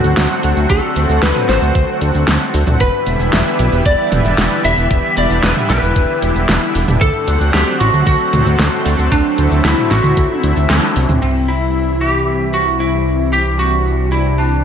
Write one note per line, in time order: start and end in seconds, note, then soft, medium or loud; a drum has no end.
0.00 2.76 D3 medium
0.00 2.76 F#3 medium
0.00 2.76 A3 medium
0.00 2.76 C4 medium
0.00 0.66 F#4 medium
0.00 2.76 F#4 loud
0.00 cabasa soft
0.04 0.14 D2 medium
0.17 0.27 D2 loud
0.17 snare loud
0.17 closed hi-hat loud
0.17 cabasa soft
0.43 0.53 D2 loud
0.43 open hi-hat medium
0.43 cabasa medium
0.56 0.66 D2 medium
0.56 cabasa soft
0.70 0.80 D2 loud
0.70 1.24 A4 loud
0.70 kick loud
0.70 closed hi-hat medium
0.70 cabasa soft
0.96 1.06 D2 medium
0.96 closed hi-hat medium
0.96 cabasa medium
1.09 1.19 D2 medium
1.09 cabasa soft
1.22 1.32 D2 loud
1.22 1.49 B4 loud
1.22 1.48 B4 loud
1.22 snare loud
1.22 closed hi-hat medium
1.22 cabasa soft
1.36 mid tom medium
1.49 1.59 A1 medium
1.49 1.98 C5 loud
1.49 snare medium
1.49 closed hi-hat medium
1.49 cabasa medium
1.62 1.72 D2 medium
1.62 cabasa soft
1.75 1.85 D2 loud
1.75 kick loud
1.75 closed hi-hat medium
1.75 cabasa soft
2.01 2.11 D2 loud
2.01 closed hi-hat medium
2.01 cabasa medium
2.15 2.24 D2 medium
2.15 cabasa soft
2.28 2.38 D2 loud
2.28 snare loud
2.28 closed hi-hat medium
2.28 cabasa soft
2.54 2.64 D2 medium
2.54 open hi-hat medium
2.54 cabasa medium
2.67 2.77 D2 medium
2.67 mid tom medium
2.67 cabasa soft
2.80 2.90 E1 loud
2.80 11.18 D3 medium
2.80 6.97 E3 medium
2.80 6.97 G3 medium
2.80 6.97 B3 medium
2.80 6.97 E4 medium
2.80 3.85 B4 medium
2.80 3.89 B4 medium
2.80 kick loud
2.80 closed hi-hat medium
2.80 cabasa soft
3.06 3.17 E1 loud
3.06 closed hi-hat medium
3.06 cabasa medium
3.20 3.30 E1 medium
3.20 cabasa soft
3.33 3.43 E1 loud
3.33 snare loud
3.33 closed hi-hat medium
3.33 cabasa soft
3.59 3.69 B1 medium
3.59 closed hi-hat medium
3.59 cabasa medium
3.72 3.82 E1 medium
3.72 cabasa soft
3.85 3.95 E1 loud
3.85 4.64 D5 loud
3.85 4.67 D5 loud
3.85 kick loud
3.85 closed hi-hat medium
3.85 cabasa soft
4.12 4.22 E1 medium
4.12 closed hi-hat medium
4.12 mid tom medium
4.12 cabasa medium
4.25 4.35 E1 medium
4.25 cabasa soft
4.38 4.48 E1 loud
4.38 snare loud
4.38 closed hi-hat medium
4.38 cabasa soft
4.64 4.74 E1 loud
4.64 5.17 E5 loud
4.64 5.19 E5 loud
4.64 open hi-hat medium
4.64 cabasa medium
4.78 4.87 E1 medium
4.78 cabasa soft
4.91 5.01 E1 loud
4.91 kick loud
4.91 closed hi-hat medium
4.91 cabasa soft
5.17 5.27 E1 loud
5.17 5.42 D5 loud
5.17 closed hi-hat medium
5.17 cabasa medium
5.30 5.40 E1 medium
5.30 cabasa soft
5.43 5.53 E1 loud
5.43 5.55 B4 medium
5.43 5.51 B4 medium
5.43 snare loud
5.43 closed hi-hat medium
5.43 cabasa soft
5.56 mid tom medium
5.69 5.80 B1 medium
5.69 6.19 B4 medium
5.69 snare medium
5.69 closed hi-hat medium
5.69 cabasa medium
5.83 5.93 E1 medium
5.83 cabasa soft
5.96 6.06 E1 loud
5.96 kick loud
5.96 closed hi-hat medium
5.96 cabasa soft
6.22 6.32 E1 loud
6.22 closed hi-hat medium
6.22 cabasa medium
6.36 6.45 E1 medium
6.36 cabasa soft
6.49 6.59 E1 loud
6.49 snare loud
6.49 closed hi-hat medium
6.49 cabasa soft
6.75 6.85 E1 loud
6.75 open hi-hat medium
6.75 cabasa medium
6.88 6.98 E1 medium
6.88 mid tom loud
6.88 cabasa soft
7.01 7.11 D2 loud
7.01 11.18 F#3 medium
7.01 11.18 A3 medium
7.01 11.18 C4 medium
7.01 7.55 A4 loud
7.01 7.56 A4 loud
7.01 9.10 F#5 medium
7.01 kick loud
7.01 closed hi-hat medium
7.01 cabasa soft
7.27 7.37 D2 medium
7.27 closed hi-hat medium
7.27 cabasa medium
7.41 7.51 D2 medium
7.41 cabasa soft
7.54 7.64 D2 loud
7.54 7.80 G4 loud
7.54 7.81 G4 loud
7.54 snare loud
7.54 closed hi-hat loud
7.54 cabasa soft
7.80 7.90 A1 loud
7.80 8.05 F#4 loud
7.80 8.06 F#4 medium
7.80 closed hi-hat medium
7.80 cabasa medium
7.93 8.03 D2 medium
7.93 cabasa soft
8.06 8.16 D2 loud
8.06 9.15 F#4 loud
8.06 kick loud
8.06 closed hi-hat medium
8.06 cabasa soft
8.33 8.43 D2 loud
8.33 closed hi-hat medium
8.33 mid tom loud
8.33 cabasa medium
8.46 8.56 D2 medium
8.46 cabasa soft
8.59 8.69 D2 loud
8.59 snare loud
8.59 closed hi-hat medium
8.59 cabasa soft
8.85 8.95 D2 loud
8.85 open hi-hat medium
8.85 cabasa medium
8.99 9.09 D2 medium
8.99 cabasa soft
9.12 9.22 D2 loud
9.12 9.66 D4 loud
9.12 9.66 D4 medium
9.12 11.20 E4 medium
9.12 kick loud
9.12 closed hi-hat medium
9.12 cabasa soft
9.38 9.48 D2 medium
9.38 closed hi-hat medium
9.38 cabasa medium
9.51 9.61 D2 medium
9.51 cabasa soft
9.64 9.74 D2 loud
9.64 9.90 E4 medium
9.64 9.92 E4 medium
9.64 snare loud
9.64 closed hi-hat loud
9.64 cabasa soft
9.78 mid tom medium
9.91 10.01 A1 medium
9.91 10.40 F#4 medium
9.91 snare medium
9.91 closed hi-hat medium
9.91 cabasa medium
10.04 10.14 D2 medium
10.04 mid tom medium
10.04 cabasa soft
10.17 10.27 D2 loud
10.17 kick loud
10.17 closed hi-hat loud
10.17 cabasa soft
10.43 10.53 D2 loud
10.43 closed hi-hat medium
10.43 cabasa medium
10.57 10.66 D2 medium
10.57 cabasa soft
10.70 10.80 D2 loud
10.70 11.22 D4 medium
10.70 snare loud
10.70 closed hi-hat medium
10.70 cabasa soft
10.96 11.06 C2 loud
10.96 open hi-hat medium
10.96 cabasa medium
11.09 11.19 D2 medium
11.09 mid tom medium
11.09 cabasa soft
11.22 14.64 C2 medium
11.22 14.64 C3 medium
11.22 14.64 E3 medium
11.22 14.64 G3 medium
11.22 11.49 C4 medium
11.22 13.31 E4 medium
11.22 crash medium
11.48 11.97 E4 medium
12.01 12.53 G4 medium
12.54 12.80 F#4 medium
12.80 13.29 E4 medium
13.33 14.64 D4 medium
13.33 13.59 G4 medium
13.59 14.11 F#4 medium
14.12 14.39 E4 medium
14.38 14.64 D4 medium